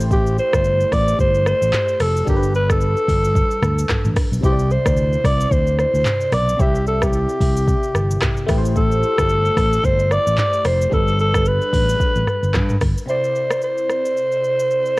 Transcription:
Already playing: fingered electric bass A1, fm electric piano A3 E4 G4 C5
0.01 shaker
0.11 alto saxophone G4, kick, shaker
0.27 shaker
0.38 alto saxophone C5, shaker
0.53 fingered electric bass G1, kick, cross-stick, shaker
0.64 shaker
0.80 shaker
0.92 fingered electric bass A1, alto saxophone D5, kick, cross-stick, open hi-hat, shaker
1.08 shaker
1.19 fingered electric bass G1, alto saxophone C5, kick, shaker
1.35 shaker
1.46 alto saxophone C5, cross-stick, shaker
1.62 fingered electric bass A1, shaker
1.73 clap, mid tom, shaker
1.88 shaker
2.00 fingered electric bass F1, alto saxophone A4, cross-stick, open hi-hat, shaker
2.17 shaker
2.25 fingered electric bass G1, fm electric piano G3 D4 A4, alto saxophone G4, kick, shaker
2.30 fm electric piano A#4
2.36 fm electric piano B4
2.43 shaker
2.54 alto saxophone B4, shaker
2.70 alto saxophone A4, kick, cross-stick, shaker
2.81 shaker
2.97 shaker
3.08 fingered electric bass G1, kick, open hi-hat, shaker
3.24 shaker
3.35 kick, shaker
3.51 shaker
3.62 fingered electric bass D2, cross-stick, mid tom, shaker
3.78 shaker
3.89 kick, cross-stick, clap, mid tom, shaker
4.05 fingered electric bass A1, mid tom, shaker
4.16 kick, cross-stick, open hi-hat, shaker
4.32 fingered electric bass B1, shaker
4.41 fingered electric bass C2, fm electric piano C3 C4 E4, kick, shaker
4.45 alto saxophone G4, fm electric piano C5
4.52 fm electric piano D5
4.59 shaker
4.71 alto saxophone C5, shaker
4.86 fingered electric bass D2, kick, cross-stick, shaker
4.97 shaker
5.13 shaker
5.24 fingered electric bass C2, alto saxophone D5, kick, cross-stick, open hi-hat, shaker
5.41 shaker
5.51 fingered electric bass D2, alto saxophone C5, kick, shaker
5.67 shaker
5.79 alto saxophone C5, cross-stick, shaker
5.94 fingered electric bass D2, shaker
6.06 clap, mid tom, shaker
6.21 shaker
6.32 fingered electric bass B1, alto saxophone D5, cross-stick, open hi-hat, shaker
6.49 shaker
6.57 fingered electric bass C2, fm electric piano C3 C4 E4, alto saxophone G4, kick, shaker
6.62 fm electric piano E5
6.75 shaker
6.87 alto saxophone A4, shaker
7.02 alto saxophone G4, kick, cross-stick, shaker
7.13 shaker
7.29 shaker
7.40 fingered electric bass C2, kick, open hi-hat, shaker
7.57 shaker
7.67 kick, shaker
7.83 shaker
7.95 fingered electric bass G1, cross-stick, shaker
8.11 shaker
8.22 kick, cross-stick, clap, mid tom, shaker
8.37 shaker
8.46 fingered electric bass A1, fm electric piano A3 E4 G4, kick, cross-stick, open hi-hat, shaker
8.51 fm electric piano B4
8.58 fm electric piano C5
8.65 shaker
8.76 alto saxophone A4, kick, shaker
8.92 shaker
9.03 shaker
9.18 fingered electric bass G1, kick, cross-stick, shaker
9.29 shaker
9.45 shaker
9.57 fingered electric bass A1, kick, cross-stick, open hi-hat, shaker
9.73 shaker
9.84 fingered electric bass G1, alto saxophone C5, kick, shaker
9.99 shaker
10.11 alto saxophone D5, cross-stick, shaker
10.27 fingered electric bass A1, shaker
10.38 alto saxophone D5, clap, mid tom, shaker
10.53 shaker
10.65 fingered electric bass F1, alto saxophone C5, cross-stick, open hi-hat, shaker
10.81 shaker
10.89 fingered electric bass G1, fm electric piano G3 D4 A4, kick, shaker
10.93 alto saxophone A4, fm electric piano B4
11.08 shaker
11.19 alto saxophone A4, shaker
11.34 kick, cross-stick, shaker
11.45 alto saxophone B4, shaker
11.61 shaker
11.73 fingered electric bass A1, kick, open hi-hat, shaker
11.89 shaker
12.00 kick, shaker
12.16 fingered electric bass A1, shaker
12.27 cross-stick, mid tom, shaker
12.43 fingered electric bass G1, shaker
12.54 fingered electric bass G2, kick, cross-stick, clap, mid tom, shaker
12.69 mid tom, shaker
12.81 fingered electric bass G1, kick, cross-stick, open hi-hat, shaker
12.98 shaker
13.06 fm electric piano C3 C4 E4, alto saxophone C5, shaker
13.11 fm electric piano D5
13.24 shaker
13.35 shaker
13.50 cross-stick, shaker
13.62 alto saxophone C5, shaker
13.78 shaker
13.89 cross-stick, shaker
14.05 shaker
14.17 shaker
14.32 shaker
14.44 shaker
14.59 shaker
14.71 shaker
14.86 shaker

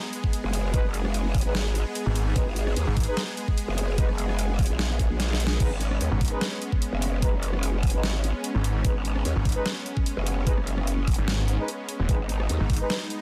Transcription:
Already playing: supersaw synth G#3 B3 G#4
0.13 closed hi-hat
0.24 kick
0.33 closed hi-hat
0.44 wobble bass F#1
0.53 open hi-hat
0.74 brass ensemble G#3 D#4 B4, kick, closed hi-hat
0.84 wobble bass F#1
0.94 closed hi-hat
1.05 cross-stick
1.14 closed hi-hat
1.35 kick, closed hi-hat, open hi-hat
1.41 wobble bass G#1, closed hi-hat
1.45 brass ensemble G#3 D#4 B4
1.55 snare
1.75 closed hi-hat
1.95 closed hi-hat
2.06 detuned saw bass G#1
2.16 open hi-hat
2.36 wobble bass G#1, brass ensemble G#3 D#4 B4, kick, closed hi-hat
2.56 closed hi-hat
2.67 cross-stick
2.76 wobble bass D#2, closed hi-hat
2.87 detuned saw bass G#1
2.97 kick, closed hi-hat, open hi-hat
3.03 brass ensemble G#3 D#4 B4, closed hi-hat
3.17 snare
3.37 closed hi-hat
3.48 kick
3.58 closed hi-hat
3.68 wobble bass F#1
3.78 open hi-hat
3.98 brass ensemble G#3 D#4 B4, kick, closed hi-hat
4.09 wobble bass F#1, cross-stick
4.18 closed hi-hat
4.29 cross-stick
4.39 closed hi-hat
4.59 kick, closed hi-hat, open hi-hat
4.66 wobble bass A#1, closed hi-hat
4.79 snare
4.99 kick, closed hi-hat
5.10 wobble bass A#1
5.20 snare, closed hi-hat
5.33 snare
5.40 open hi-hat
5.47 snare
5.60 wobble bass G#1, brass ensemble G#3 D#4 B4, supersaw synth C#4, kick, closed hi-hat, crash
5.81 closed hi-hat
5.91 cross-stick
6.01 wobble bass D#2, closed hi-hat
6.12 detuned saw bass G#1
6.21 kick, closed hi-hat, open hi-hat
6.28 closed hi-hat
6.32 brass ensemble G#3 D#4 B4
6.41 snare
6.62 closed hi-hat
6.72 kick
6.82 closed hi-hat
6.93 wobble bass F#1
7.02 open hi-hat
7.22 brass ensemble G#3 D#4 B4, kick, closed hi-hat
7.33 wobble bass F#1
7.43 closed hi-hat
7.53 cross-stick
7.63 closed hi-hat
7.83 kick, closed hi-hat, open hi-hat
7.90 closed hi-hat
7.94 wobble bass G#1, brass ensemble G#3 D#4 B4
8.03 snare
8.24 closed hi-hat
8.44 closed hi-hat
8.55 detuned saw bass G#1
8.64 open hi-hat
8.85 wobble bass G#1, brass ensemble G#3 D#4 B4, kick, closed hi-hat
9.05 closed hi-hat
9.16 cross-stick
9.25 wobble bass D#2, closed hi-hat
9.36 detuned saw bass G#1
9.45 kick, closed hi-hat, open hi-hat
9.52 brass ensemble G#3 D#4 B4, closed hi-hat
9.66 snare
9.86 closed hi-hat
9.97 kick
10.06 closed hi-hat
10.17 wobble bass F#1
10.27 open hi-hat
10.47 brass ensemble G#3 D#4 B4, kick, closed hi-hat
10.58 wobble bass F#1, cross-stick
10.67 closed hi-hat
10.78 cross-stick
10.87 closed hi-hat
11.08 kick, closed hi-hat, open hi-hat
11.14 closed hi-hat
11.18 detuned saw bass G#1
11.28 snare
11.48 closed hi-hat
11.59 brass ensemble G#3 D#4 B4
11.68 closed hi-hat
11.89 open hi-hat
11.99 detuned saw bass D#1
12.09 wobble bass G#1, brass ensemble G#3 D#4 B4, supersaw synth D#4, kick, closed hi-hat
12.29 closed hi-hat
12.40 cross-stick
12.49 wobble bass D#2, closed hi-hat
12.60 detuned saw bass G#1
12.70 kick, closed hi-hat, open hi-hat
12.76 closed hi-hat
12.81 brass ensemble G#3 D#4 B4
12.90 snare
13.10 closed hi-hat

